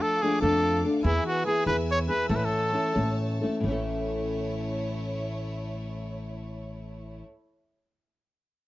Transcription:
Already playing: F3 A3 D4 A4 F5 D6
0.02 A4
0.22 F3 A3 D4 G#4 A4
0.42 F2 F3 A3 D4 A4
0.85 A3 D4 A4
1.04 E2 E3 B3 E4 G#4 B4 G#5 E6
1.27 F#4
1.46 E3 B3 E4 G#4
1.66 E2 E3 B3 E4 G#4 B4
1.91 C#5
2.08 B3 E4 G#4 B4
2.29 A1 A2 E3 A3 C#4 E4 A4 C#5 A5
2.36 B4
2.45 A4
2.73 A3 C#4 E4 A4
2.95 A1 A2 E3 A3 C#4 E4 A4
3.41 A3 C#4 E4 A4
3.60 A1 A2 E3 A3 E4 C#5
3.66 A3 C#4
3.70 E4 A4

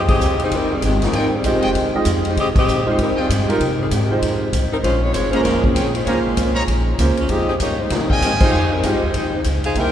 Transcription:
Already playing: F2 F3 G#3 D#4 F4 C5 D#5 G5
0.08 C4 G4 G#4 D#5, kick, crash
0.20 C2, hi-hat pedal
0.39 G#3 G4 C5, ride
0.43 D#4
0.51 F1 G3 C4 D#4 A#4, kick, ride
0.73 D#3 G3 C4 G#4
0.82 G1 D#3 G#3 C4 G4, kick, hi-hat pedal, ride
1.02 G3 D#4 A#4, snare, ride
1.06 C4
1.11 G#1 F4 G#4 D#5 G5, kick, ride
1.18 G3 C4 D#4 A#4
1.35 D#3 G3 C4 G#4
1.44 A#1 G#3 C4 D#4 F4 G4 C5, kick, hi-hat pedal, ride
1.48 D#3 G#3
1.54 G#1
1.61 F1 F4 G#4 D#5 G5, ride
1.75 C2, kick, ride
1.94 G#3 D#4 F4 G4 D#5, muted upright bass stroke
2.05 F2, kick, hi-hat pedal, ride
2.25 ride
2.29 G#3 D#4 G4 C5
2.37 C3 G4, kick, ride
2.41 C4 G#4 D#5
2.56 C4 G4 G#4 D#5, kick, crash
2.68 A#2, hi-hat pedal
2.86 G#3 D#4 F4 G4 C5
2.90 G#3 D#4 C5
2.98 G#2 C4 D#4 A#4, kick, ride
3.03 G3
3.15 F4 G#4 D#5 G5, muted upright bass stroke
3.20 D#3 G3 C4 G#4
3.29 G2 D#3 G#3 C4 G4, kick, hi-hat pedal, ride
3.48 G#3 D#4 F4 G4 A#4, ride
3.60 C3, kick, ride
3.81 D#3 G3 C4 G#4
3.91 G#2 D#3 G#3 C4 G4, kick, hi-hat pedal, ride
4.11 G#3 D#4 F4 G4 C5
4.22 F2, kick, ride
4.53 C2, kick, hi-hat pedal, ride
4.71 G3 C4 D#4 A#4, muted upright bass stroke
4.83 A#1 G#3 C#4 F4 C5, kick, ride
5.02 G#3 C4 F4 C#5
5.12 G1 G#3 C4 F4 C5 C#5, kick, hi-hat pedal, ride
5.31 G#3 A#3 C#4 F4 G#4 C5 C#5 A#5, ride
5.43 F1 G#3 C#4 F4 A#4, kick, snare, ride
5.64 F3 C4 C#4 G#4, kick
5.74 A#1 G#4 C5 C#5 G5, kick, hi-hat pedal, ride
5.95 G#3 C#4 F4 C5, ride
6.05 C#2 A#3 C#4 F4 G#4 C5 C#5 A#5, kick, ride
6.17 A#1
6.26 G#1
6.37 C2, kick, hi-hat pedal, ride
6.54 G#4 C5 C#5 A#5, ride
6.68 A#1, kick, ride
6.99 C#2 A#3 C#4 F4 G#4 C5, kick, hi-hat pedal, ride
7.17 G#3 C#4 F4 C5, muted upright bass stroke, ride
7.29 F2 G#3 C4 D#4 F4 G4 G#4 D#5, kick, ride
7.49 C4 G4 G#4 D#5
7.60 G2 A#3 D#4 G4 C#5, kick, hi-hat pedal, ride
7.80 G#3 D#4 G4 C5
7.90 C3 G3 C4 D#4, kick, snare, ride
7.95 A#4
8.09 D#3 G3 C4 G#4 D#5 F5 G5 G#5, kick
8.22 G#2 D#3 G#3 C4 G4, kick, hi-hat pedal, ride
8.40 G#3 C4 D#4 F4 G4 C5, kick, crash
8.50 F2 G4 D#5 F5 G#5
8.72 G3 C4 D#4 A#4
8.83 G2 G#3 C4 D#4 F4 G4 C5, kick, hi-hat pedal, ride
8.94 F2
9.03 D#2
9.14 D#2, kick, ride
9.44 C#2, kick, hi-hat pedal, ride
9.64 D#4 G#4 C5 F5, ride
9.75 C2 G3 A#3 C4 E4 G4 A#4 C5 G5, kick, ride

